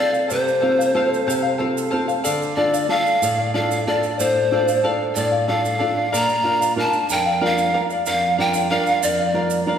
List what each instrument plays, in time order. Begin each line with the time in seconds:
Already playing: nylon-string guitar C4 F4 A4, charango A4 C5 F5
0.00 pan flute D5
0.12 charango C5 F5, shaker
0.28 nylon-string guitar C3, charango A4 C5 F5, shaker
0.32 pan flute C5
0.48 shaker
0.61 nylon-string guitar C4 F4 A4, charango A4 C5 F5
0.79 charango C5 F5, shaker
0.94 nylon-string guitar C4 F4 A4, charango A4 C5 F5
1.14 shaker
1.27 nylon-string guitar C3, charango A4 C5 F5, shaker
1.42 charango C5 F5
1.58 nylon-string guitar C4 F4 A4, charango A4 C5 F5
1.78 shaker
1.90 nylon-string guitar C4 F4 A4, charango A4 C5 F5
2.08 charango C5 F5, shaker
2.24 nylon-string guitar D3, charango A4 D5 F5, shaker
2.42 shaker
2.56 nylon-string guitar D4 F4 A4, charango A4 D5 F5, pan flute D5
2.73 charango D5 F5, shaker
2.89 nylon-string guitar D4 F4 A4, charango A4 D5 F5, pan flute F5
3.06 shaker
3.22 nylon-string guitar A2, charango A4 D5 F5, shaker
3.38 charango D5 F5
3.54 nylon-string guitar D4 F4 A4, charango A4 D5 F5, pan flute F5
3.71 shaker
3.87 nylon-string guitar D4 F4 A4, charango A4 D5 F5, pan flute D5
4.03 charango D5 F5, shaker
4.19 nylon-string guitar A2, charango A4 D5 F5, pan flute C5, shaker
4.51 nylon-string guitar D4 F4 A4, charango A4 D5 F5
4.68 charango D5 F5, shaker
4.83 nylon-string guitar D4 F4 A4, charango A4 D5 F5
5.15 nylon-string guitar A2, charango A4 D5 F5, pan flute D5, shaker
5.32 charango D5 F5
5.48 nylon-string guitar D4 F4 A4, charango A4 D5 F5, pan flute F5
5.65 shaker
5.79 nylon-string guitar D4 F4 A4, charango A4 D5 F5
5.96 charango D5 F5
6.12 nylon-string guitar A#2, charango A#4 D5 F5, pan flute A#5, shaker
6.29 shaker
6.44 nylon-string guitar D4 F4 A#4, charango A#4 D5 F5
6.60 charango D5 F5, shaker
6.76 nylon-string guitar D4 F4 A#4, charango A#4 D5 F5, pan flute A5
6.93 shaker
7.09 nylon-string guitar F2, charango A#4 D5 F5, pan flute G5, shaker
7.26 charango D5 F5
7.41 nylon-string guitar D4 F4 A#4, charango A#4 D5 F5
7.46 pan flute F5
7.58 shaker
7.74 nylon-string guitar D4 F4 A#4, charango A#4 D5 F5
7.90 charango D5 F5, shaker
8.06 nylon-string guitar F2, charango A#4 D5 F5, pan flute F5, shaker
8.38 nylon-string guitar D4 F4 A#4, charango A#4 D5 F5, pan flute G5
8.54 charango D5 F5, shaker
8.70 nylon-string guitar D4 F4 A#4, charango A#4 D5 F5, pan flute F5
8.87 shaker
9.03 nylon-string guitar F2, charango A#4 D5 F5, pan flute D5, shaker
9.19 charango D5 F5
9.34 nylon-string guitar D4 F4 A#4, charango A#4 D5 F5
9.50 shaker
9.66 nylon-string guitar D4 F4 A#4, charango A#4 D5 F5